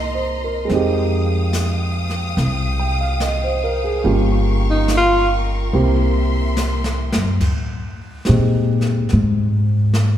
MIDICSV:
0, 0, Header, 1, 6, 480
1, 0, Start_track
1, 0, Key_signature, -4, "minor"
1, 0, Tempo, 839161
1, 403, Time_signature, 4, 2, 24, 8
1, 5822, End_track
2, 0, Start_track
2, 0, Title_t, "String section"
2, 0, Program_c, 0, 48
2, 0, Note_on_c, 0, 75, 52
2, 0, Note_on_c, 0, 82, 58
2, 0, Note_on_c, 0, 84, 62
2, 389, Note_off_c, 0, 84, 0
2, 391, Note_off_c, 0, 75, 0
2, 391, Note_off_c, 0, 82, 0
2, 401, Note_on_c, 0, 77, 56
2, 402, Note_on_c, 0, 79, 53
2, 403, Note_on_c, 0, 87, 65
2, 2301, Note_off_c, 0, 87, 0
2, 2307, Note_on_c, 0, 70, 61
2, 2309, Note_on_c, 0, 85, 71
2, 3257, Note_off_c, 0, 77, 0
2, 3265, Note_off_c, 0, 85, 0
2, 3275, Note_on_c, 0, 76, 58
2, 3281, Note_on_c, 0, 84, 69
2, 4218, Note_off_c, 0, 70, 0
2, 4220, Note_off_c, 0, 79, 0
2, 4231, Note_off_c, 0, 76, 0
2, 4234, Note_off_c, 0, 84, 0
2, 5822, End_track
3, 0, Start_track
3, 0, Title_t, "Grand piano"
3, 0, Program_c, 1, 0
3, 0, Control_c, 1, 64, 127
3, 0, Note_on_c, 1, 58, 49
3, 0, Note_on_c, 1, 63, 42
3, 0, Note_on_c, 1, 64, 43
3, 0, Note_on_c, 1, 68, 52
3, 0, Note_on_c, 1, 75, 42
3, 83, Note_on_c, 1, 72, 40
3, 219, Note_off_c, 1, 75, 0
3, 254, Note_on_c, 1, 70, 39
3, 331, Note_off_c, 1, 72, 0
3, 371, Note_on_c, 1, 56, 54
3, 387, Note_on_c, 1, 60, 49
3, 391, Note_off_c, 1, 58, 0
3, 396, Note_off_c, 1, 63, 0
3, 404, Note_off_c, 1, 64, 0
3, 407, Note_off_c, 1, 68, 0
3, 410, Control_c, 1, 64, 0
3, 413, Note_on_c, 1, 63, 53
3, 429, Note_on_c, 1, 67, 59
3, 496, Note_off_c, 1, 70, 0
3, 510, Control_c, 1, 64, 127
3, 1599, Note_on_c, 1, 79, 41
3, 1721, Note_on_c, 1, 77, 46
3, 1748, Note_off_c, 1, 79, 0
3, 1836, Note_on_c, 1, 75, 48
3, 1888, Note_off_c, 1, 77, 0
3, 1966, Note_on_c, 1, 72, 44
3, 2061, Note_off_c, 1, 75, 0
3, 2081, Note_on_c, 1, 70, 43
3, 2168, Note_off_c, 1, 72, 0
3, 2197, Note_on_c, 1, 68, 51
3, 2229, Note_off_c, 1, 70, 0
3, 2304, Note_off_c, 1, 56, 0
3, 2309, Note_off_c, 1, 67, 0
3, 2310, Note_on_c, 1, 61, 42
3, 2311, Note_on_c, 1, 58, 49
3, 2312, Note_off_c, 1, 60, 0
3, 2318, Note_on_c, 1, 65, 46
3, 2318, Note_on_c, 1, 67, 53
3, 2325, Note_off_c, 1, 63, 0
3, 2327, Control_c, 1, 64, 0
3, 2366, Note_off_c, 1, 68, 0
3, 2433, Control_c, 1, 64, 127
3, 3270, Note_off_c, 1, 58, 0
3, 3276, Note_off_c, 1, 61, 0
3, 3278, Note_on_c, 1, 58, 51
3, 3279, Note_off_c, 1, 65, 0
3, 3279, Note_off_c, 1, 67, 0
3, 3282, Note_on_c, 1, 60, 44
3, 3285, Note_on_c, 1, 64, 43
3, 3287, Control_c, 1, 64, 0
3, 3288, Note_on_c, 1, 67, 55
3, 3399, Control_c, 1, 64, 127
3, 4243, Note_off_c, 1, 58, 0
3, 4245, Note_off_c, 1, 60, 0
3, 4246, Note_off_c, 1, 64, 0
3, 4247, Note_off_c, 1, 67, 0
3, 4250, Control_c, 1, 64, 0
3, 4357, Control_c, 1, 64, 127
3, 4725, Note_on_c, 1, 56, 37
3, 4725, Note_on_c, 1, 63, 34
3, 4727, Note_on_c, 1, 60, 36
3, 4730, Note_on_c, 1, 67, 44
3, 5013, Note_off_c, 1, 56, 0
3, 5013, Note_off_c, 1, 63, 0
3, 5014, Note_off_c, 1, 60, 0
3, 5016, Note_off_c, 1, 67, 0
3, 5822, End_track
4, 0, Start_track
4, 0, Title_t, "Tenor saxophone"
4, 0, Program_c, 2, 66
4, 2691, Note_on_c, 2, 63, 66
4, 2816, Note_off_c, 2, 63, 0
4, 2843, Note_on_c, 2, 65, 83
4, 3022, Note_off_c, 2, 65, 0
4, 5822, End_track
5, 0, Start_track
5, 0, Title_t, "Upright bass"
5, 0, Program_c, 3, 32
5, 0, Note_on_c, 3, 36, 69
5, 376, Note_off_c, 3, 36, 0
5, 398, Note_on_c, 3, 41, 79
5, 1336, Note_off_c, 3, 41, 0
5, 1355, Note_on_c, 3, 36, 76
5, 2295, Note_off_c, 3, 36, 0
5, 2315, Note_on_c, 3, 31, 74
5, 3255, Note_off_c, 3, 31, 0
5, 3279, Note_on_c, 3, 36, 75
5, 4060, Note_off_c, 3, 36, 0
5, 4086, Note_on_c, 3, 42, 63
5, 4234, Note_off_c, 3, 42, 0
5, 4740, Note_on_c, 3, 46, 59
5, 5190, Note_off_c, 3, 46, 0
5, 5221, Note_on_c, 3, 44, 61
5, 5822, Note_off_c, 3, 44, 0
5, 5822, End_track
6, 0, Start_track
6, 0, Title_t, "Drums"
6, 397, Note_on_c, 9, 25, 35
6, 397, Note_on_c, 9, 38, 27
6, 454, Note_off_c, 9, 38, 0
6, 875, Note_on_c, 9, 38, 42
6, 875, Note_on_c, 9, 44, 53
6, 933, Note_off_c, 9, 38, 0
6, 933, Note_off_c, 9, 44, 0
6, 1199, Note_on_c, 9, 38, 23
6, 1256, Note_off_c, 9, 38, 0
6, 1357, Note_off_c, 9, 25, 0
6, 1357, Note_on_c, 9, 25, 30
6, 1357, Note_on_c, 9, 38, 27
6, 1414, Note_off_c, 9, 38, 0
6, 1832, Note_on_c, 9, 38, 45
6, 1832, Note_on_c, 9, 44, 51
6, 1889, Note_off_c, 9, 38, 0
6, 1889, Note_off_c, 9, 44, 0
6, 2316, Note_off_c, 9, 25, 0
6, 2316, Note_on_c, 9, 25, 32
6, 2791, Note_on_c, 9, 38, 41
6, 2791, Note_on_c, 9, 44, 55
6, 2848, Note_off_c, 9, 38, 0
6, 2848, Note_off_c, 9, 44, 0
6, 3274, Note_off_c, 9, 25, 0
6, 3274, Note_on_c, 9, 25, 37
6, 3756, Note_on_c, 9, 38, 41
6, 3756, Note_on_c, 9, 44, 54
6, 3814, Note_off_c, 9, 38, 0
6, 3814, Note_off_c, 9, 44, 0
6, 3914, Note_on_c, 9, 38, 50
6, 3971, Note_off_c, 9, 38, 0
6, 4075, Note_on_c, 9, 38, 65
6, 4132, Note_off_c, 9, 38, 0
6, 4236, Note_off_c, 9, 25, 0
6, 4236, Note_on_c, 9, 25, 41
6, 4236, Note_on_c, 9, 38, 35
6, 4236, Note_on_c, 9, 51, 56
6, 4238, Note_on_c, 9, 36, 60
6, 4293, Note_off_c, 9, 38, 0
6, 4293, Note_off_c, 9, 51, 0
6, 4295, Note_off_c, 9, 36, 0
6, 4719, Note_on_c, 9, 38, 47
6, 4776, Note_off_c, 9, 38, 0
6, 5039, Note_on_c, 9, 38, 29
6, 5096, Note_off_c, 9, 38, 0
6, 5199, Note_off_c, 9, 25, 0
6, 5199, Note_on_c, 9, 25, 37
6, 5199, Note_on_c, 9, 38, 35
6, 5256, Note_off_c, 9, 38, 0
6, 5683, Note_on_c, 9, 38, 48
6, 5740, Note_off_c, 9, 38, 0
6, 5822, Note_off_c, 9, 25, 0
6, 5822, End_track
0, 0, End_of_file